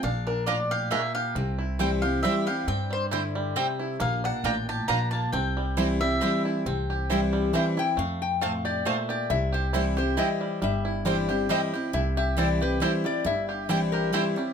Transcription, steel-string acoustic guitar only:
0.03 A#2
0.47 A2
0.92 A#2
1.36 C3
1.79 E3 G3 C4 E4
2.03 C4 E4
2.24 E3 G3 C4 E4
2.47 C4 E4
2.68 G2
3.13 D3
3.56 C3
4.00 A#2
4.44 A2
4.89 A#2
5.33 C3
5.77 E3 G3 C4 E4
6.01 C4 E4
6.21 E3 G3 C4 E4
6.66 C3
7.11 E3 G3 C4 E4
7.53 E3 G3 C4 E4
7.77 C4 E4
7.99 F2
8.43 A2
8.87 A#2
9.30 C3
9.74 E3 G3 C4 E4
9.97 C4 E4
10.17 E3 G3 C4 E4
10.62 G2
11.05 E3 G3 C4 E4
11.29 C4 E4
11.49 E3 G3 C4 E4
11.74 C4 E4
11.93 C3
12.37 E3 G3 C4 E4
12.60 C4 E4
12.80 E3 G3 C4 E4
13.04 C4 E4
13.24 G2
13.69 E3 G3 C4 E4
14.13 E3 G3 C4 E4
14.36 C4 E4

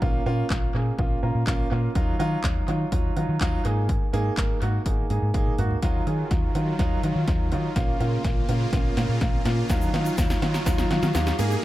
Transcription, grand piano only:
0.02 A#3 C#4 F4
0.26 A#3 C#4 F4
0.74 A#3 C#4 G#4
0.99 A#3 C#4 F4
1.23 A#3 C#4 F4 A#5
1.47 A#3 C#4 F4 F5
1.71 A#3 C#4 F4
1.95 F#3 D#4 F4
2.19 F#3 D#4 F4
2.44 F#3 D#4
2.68 F#3 D#4 F4
2.92 F#3 D#4 F4
3.16 F#3 D#4 F4
3.41 F#3 D#4 F4
3.65 A#3 D#4 G#4
4.13 A#3 D#4 G#4
4.37 A#3 D#4 A#4
4.61 A#3 D#4 F#4
4.86 A#3 D#4 G#4
5.10 A#3 D#4 G#4
5.34 A#3 D#4 G#4
5.58 A#3 D#4 F#4
5.82 F#3 D#4 F4
6.07 F#3 D#4 G#4
6.31 F#3 D#4 F4
6.55 F#3 D#4 F4
6.79 F#3 D#4 F4
7.03 F#3 D#4 F4
7.28 F#3 D#4 F4
7.52 F#3 D#4 F4
7.76 A#3 C#4 F4
8.00 A#3 C#4 F4
8.24 A#3 C#4 F4
8.48 A#3 C#4 F4
8.73 A#3 C#4 F4
8.97 A#3 C#4 F4
9.21 A#3 C#4 F4
9.45 A#3 C#4 F4
9.70 F#3 D#4 F4
9.94 F#3 D#4 F4
10.18 F#3 D#4 F4
10.42 F#3 D#4 F4
10.66 F#3 D#4 F4
10.90 F#3 D#4 F4
11.14 F#3 D#4 F4
11.39 A#3 D#4 G#4

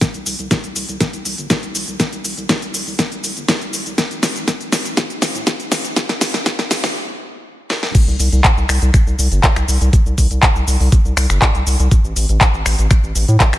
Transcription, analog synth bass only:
0.14 C2
0.26 C2
0.39 C2
0.64 C2
0.76 C2
0.89 C2
1.13 C2
1.25 C2
1.38 G1
1.63 C2
1.75 C2
1.88 C2
2.13 C2
2.25 C2
2.37 C2
2.62 C2
2.74 C2
2.87 C2
3.12 C2
3.24 C2
3.37 G1
3.61 C2
3.73 C2
3.86 C2
4.11 A1
4.23 A1
4.36 A1
4.60 A1
4.72 A1
4.85 A1
5.10 A1
5.22 A1
5.35 A2
5.60 A1
5.72 A1
5.84 A1
6.09 A1
6.21 A1
6.34 A1
6.59 A1
6.71 A1
6.84 A1
8.08 C2
8.20 C2
8.32 C2
8.57 C2
8.69 C2
8.82 C2
9.07 C2
9.19 C2
9.32 G1
9.56 C2
9.68 C2
9.81 C2
10.06 C2
10.18 C2
10.31 C2
10.56 C2
10.68 C2
10.80 C2
11.05 C2
11.17 C2
11.30 G1
11.55 C2
11.67 C2
11.80 C2
12.04 A1
12.16 A1
12.29 A1
12.54 A1
12.66 A1
12.79 A1
13.04 A1
13.15 A1
13.28 A2
13.53 A1

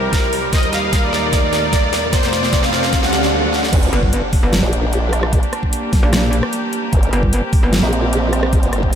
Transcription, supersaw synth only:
Already playing: A#4
0.53 D#5
0.73 F5
1.03 D5
1.43 D5
2.13 C5
2.33 D5
2.63 F5
3.03 F#5

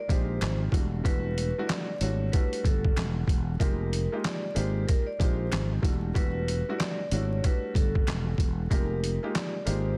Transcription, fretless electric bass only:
0.09 A#1
0.41 G#1
0.72 E1
1.05 E1
2.01 G#1
2.65 G1
2.97 E1
3.60 F1
4.56 G#1
5.20 A#1
5.52 G#1
5.83 E1
6.16 E1
7.12 G#1
7.75 G1
8.07 E1
8.38 E1
8.71 F1
9.67 G#1

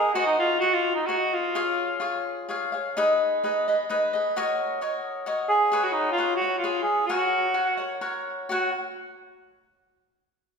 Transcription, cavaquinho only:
Already playing: A#4 D#5 F#5
0.15 F#4 G#4 C5 D#5
0.62 F#4 G#4 C5 D#5
1.09 F#4 G#4 C5 D#5
1.55 F4 G#4 C#5 F5
2.00 F4 G#4 C#5 F5
2.49 F4 G#4 C#5 F5
2.72 G#4 C#5 F5
2.97 D#4 G#4 B4 D#5
3.44 D#4 G#4 B4 D#5
3.68 G#4 B4 D#5
3.89 D#4 G#4 B4 D#5
4.13 G#4 B4 D#5
4.36 F#4 A#4 C#5 D#5
4.81 F#4 A#4 C#5 D#5
5.26 F#4 A#4 C#5 D#5
5.72 G#4 B4 C#5 F#5
6.17 G#4 B4 C#5 F#5
6.41 B4 C#5 F#5
6.64 G#4 B4 C#5 F5
7.09 F#4 A#4 C#5 F#5
7.54 F#4 A#4 C#5 F#5
7.77 A#4 C#5 F#5
8.01 F#4 A#4 C#5 F#5
8.49 F#4 A#4 C#5 F#5

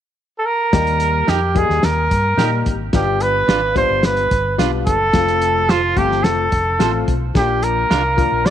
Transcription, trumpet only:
0.38 A4
0.46 A#4
1.29 G4
1.57 G#4
1.84 A#4
2.96 G4
3.22 B4
3.77 C5
4.06 B4
4.87 A4
5.70 F4
5.97 G4
6.24 A4
7.37 G4
7.64 A#4
8.46 D5

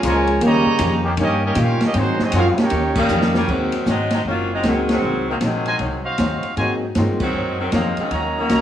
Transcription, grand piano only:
3.48 G#3 A#3 C4 D#4 F#4
4.64 G#3 A#3 C4 D#4 F#4
6.57 G#3 A#3 C4 D#4 F#4
6.96 G#3 A#3 C4 D#4 F4

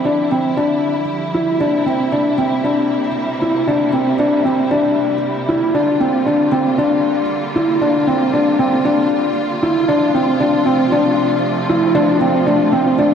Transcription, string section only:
Already playing: D3 F3 G3 E4
1.61 C3 A#3
5.75 D3 A#3 F4
9.89 C3 F3 A3

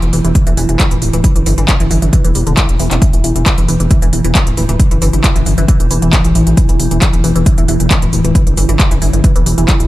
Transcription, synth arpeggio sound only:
0.02 E3
0.13 E3
0.25 E3
0.35 E3
0.47 E3
0.57 E3
0.69 E3
0.80 E3
0.91 E3
1.02 E3
1.13 E3
1.24 E3
1.36 E3
1.46 E3
1.58 E3
1.68 E3
1.80 E3
1.91 E3
2.02 E3
2.13 E3
2.24 E3
2.35 G3
2.47 D3
2.57 E3
2.79 E3
2.91 C4
3.02 E3
3.13 E3
3.24 E3
3.36 E3
3.46 E3
3.58 E3
3.68 E3
3.80 E3
3.91 E3
4.02 E3
4.13 E3
4.24 E3
4.35 E3
4.47 E3
4.57 E3
4.69 E3
4.80 E3
4.91 E3
5.02 E3
5.13 E3
5.24 E3
5.36 E3
5.46 E3
5.58 E3
5.68 E3
5.80 E3
5.91 E3
6.02 E3
6.13 E3
6.24 E3
6.35 E3
6.47 E3
6.57 E3
6.69 E3
6.79 E3
6.91 E3
7.02 E3
7.13 E3
7.24 E3
7.36 E3
7.46 E3
7.58 E3
7.68 E3
7.80 E3
7.91 E3
8.02 E3
8.13 E3
8.25 E3
8.35 E3
8.47 E3
8.57 E3
8.69 E3
8.79 E3
8.91 E3
9.02 E3
9.13 E3
9.24 E3
9.36 E3
9.46 E3
9.58 E3
9.68 E3
9.80 E3

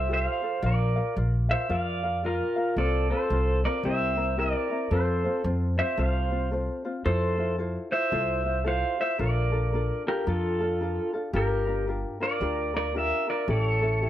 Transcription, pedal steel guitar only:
Already playing: E5
0.13 C5 F5
0.66 A#4 D5
1.51 C5 E5
1.72 D5 F5
2.26 F4 A#4
2.78 A4 D5
3.10 A4 C5
3.65 A#4 D5
3.85 C5 E5
4.39 A#4 D5
4.92 A4 C5
5.79 C5 E5
5.99 C5 F5
7.06 A4 C5
7.92 C5 E5
8.68 C5 F5
9.01 C5 E5
9.20 A#4 D5
10.08 G4 A#4
10.28 F4 A4
11.36 G4 A#4
12.23 A#4 D5
12.77 A#4 D5
12.97 A#4 E5
13.30 A#4 D5
13.50 A4 D5
13.61 C#5

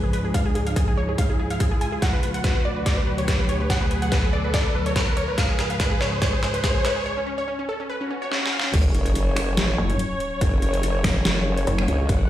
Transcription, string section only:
Already playing: C#2 G#2 F3
2.02 D2 B2 F#3
5.38 C#2 G#2 F3
8.73 F#3 C#4 C#5
12.09 F#5

